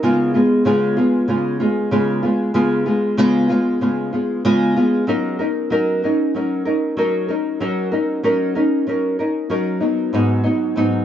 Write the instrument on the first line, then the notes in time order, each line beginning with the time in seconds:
nylon-string guitar
0.03 C#3 G#3 B3 F4
0.34 G#3 B3 F4
0.65 C#3 G#3 B3 F4
0.97 G#3 B3 F4
1.28 C#3 G#3 B3 F4
1.60 G#3 B3 F4
1.91 C#3 G#3 B3 F4
2.23 G#3 B3 F4
2.54 C#3 G#3 B3 F4
2.86 G#3 B3 F4
3.17 C#3 G#3 B3 F4
3.49 G#3 B3 F4
3.81 C#3 G#3 B3 F4
4.13 G#3 B3 F4
4.45 C#3 G#3 B3 F4
4.76 G#3 B3 F4
5.07 F#3 C#4 D#4 A#4
5.39 C#4 D#4 A#4
5.70 F#3 C#4 D#4 A#4
6.04 C#4 D#4 A#4
6.34 F#3 C#4 D#4 A#4
6.65 C#4 D#4 A#4
6.97 F#3 C#4 D#4 A#4
7.29 C#4 D#4 A#4
7.60 F#3 C#4 D#4 A#4
7.92 C#4 D#4 A#4
8.23 F#3 C#4 D#4 A#4
8.55 C#4 D#4 A#4
8.87 F#3 C#4 D#4 A#4
9.19 C#4 D#4 A#4
9.50 F#3 C#4 D#4 A#4
9.81 F#3 B3 D#4
10.13 G#2 F#3 B3 D#4
10.44 F#3 B3 D#4
10.76 G#2 F#3 B3 D#4